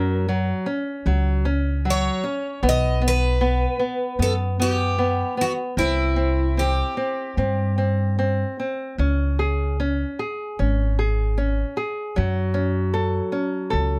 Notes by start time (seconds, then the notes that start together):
Already playing: F#2 F#3 C#4 A#4
0.29 F#3
0.66 C#4
1.06 C#2 F#3
1.45 C#4
1.85 F#3
1.90 C#5
2.24 C#4
2.63 B1 B3
2.69 D#5
3.02 B3
3.08 B4
3.41 B3
3.79 B3
4.19 F#2 B3 A4
4.60 B3 G4
4.98 B3
5.37 B3 F#4
5.77 C2 C4 E4
6.16 C4
6.57 C4 G4
6.97 C4
7.37 G2 C4
7.78 C4
8.19 C4
8.60 C4
8.98 C#2 C#4
9.39 G#4
9.80 C#4
10.19 G#4
10.59 G#1 C#4
10.99 G#4
11.38 C#4
11.77 G#4
12.16 F#2 F#3
12.54 C#4
12.94 A4
13.32 C#4
13.70 C#2 A4